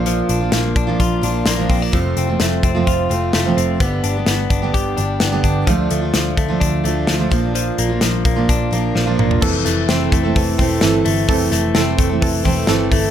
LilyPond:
<<
  \new Staff \with { instrumentName = "Reed electric piano" } { \time 4/4 \key a \phrygian \tempo 4 = 128 << { r1 | r1 | r1 | r1 |
r1 | r1 | r2 r8 e''8 a''8 a''8 | } \\ { r1 | r1 | r1 | r1 |
r1 | <c' e' a'>4 <c' e' c''>4 <c' e' a'>4 <c' e' a'>4 | <c' e' a'>4 <c' e' a'>4 <c' e' a'>4 <c' e' a'>4 | } >> }
  \new Staff \with { instrumentName = "Clean electric guitar" } { \time 4/4 \key a \phrygian f8 d'8 bes8 d'8 f'8 d'8 bes8 c'16 d'16 | f8 c'8 a8 c'8 f'8 c'8 a8 c'8 | b8 d'8 b8 d'8 g'8 d'8 b8 d'8 | f8 a8 f8 a8 d'8 a8 f8 f8 |
f8 bes8 f8 bes8 d'8 bes8 f8 bes8 | e8 a8 c'8 a8 e8 c'8 e8 a8 | e8 a8 c'8 a8 e8 c'8 e8 a8 | }
  \new Staff \with { instrumentName = "Steel-string acoustic guitar" } { \time 4/4 \key a \phrygian <bes, f bes d' f'>8. <bes d' f'>4 <bes, f bes d' f'>8. <f bes d' f'>8. <bes, f bes d' f'>8. | <f, c f a c' f'>8. <f a c' f'>4 <f, c f a c' f'>8. <f a c' f'>8. <f, c f a c' f'>8. | <g, d g b d' g'>8. <g b d' g'>4 <g, d g b d' g'>8. <g b d' g'>8. <g, d g b d' g'>8. | <d f a d' f'>8. <a d' f'>4 <d f a d' f'>8. <f a d' f'>8. <d f a d' f'>16 <bes, f bes d' f'>8~ |
<bes, f bes d' f'>8. <bes d' f'>4 <bes, f bes d' f'>8. <f bes d' f'>8. <bes, f bes d' f'>8. | <e a c' a'>4 <e a c' a'>8. <e a c' a'>8. <e a c' a'>8 <e a c' a'>4 | <e a c' a'>4 <e a c' a'>8. <e a c' a'>8. <e a c' a'>8 <e a c' a'>4 | }
  \new Staff \with { instrumentName = "Picked electric bass" } { \clef bass \time 4/4 \key a \phrygian bes,,8 bes,,8 bes,,8 bes,,8 bes,,8 bes,,8 bes,,8 bes,,8 | f,,8 f,,8 f,,8 f,,8 f,,8 f,,8 f,,8 f,,8 | g,,8 g,,8 g,,8 g,,8 g,,8 g,,8 g,,8 g,,8 | d,8 d,8 d,8 d,8 d,8 d,8 d,8 bes,,8~ |
bes,,8 bes,,8 bes,,8 bes,,8 bes,,8 bes,,8 bes,,8 bes,,8 | f,,8 f,,8 f,,8 f,,8 f,,8 e,,8 g,,8 g,,8 | f,,8 f,,8 f,,8 f,,8 f,,8 e,,8 g,,8 g,,8 | }
  \new DrumStaff \with { instrumentName = "Drums" } \drummode { \time 4/4 hh8 hh8 <hh sn>8 <hh bd>8 <hh bd>8 hh8 <hh sn>8 <hho bd>8 | <hh bd>8 hh8 <hh sn>8 <hh bd>8 <hh bd>8 hh8 <hh sn>8 hh8 | <hh bd>8 hh8 <hh sn>8 <hh bd>8 <hh bd>8 hh8 <hh sn>8 <hh bd>8 | <hh bd>8 hh8 <hh sn>8 <hh bd>8 <hh bd>8 hh8 <hh sn>8 <hh bd>8 |
hh8 hh8 <hh sn>8 <hh bd>8 <hh bd>8 hh8 sn8 toml16 tomfh16 | <cymc bd>8 <hho hhp sn>8 <hho hhp sn>8 <hho hhp bd>8 <hho hhp bd>8 <hho hhp bd>8 <hho hhp sn>8 <hho hhp>8 | <hho hhp bd>8 <hho hhp sn>8 <hho hhp sn>8 <hho hhp bd>8 <hho hhp bd>8 <hho hhp bd>8 <hho hhp sn>8 <hho hhp bd>8 | }
>>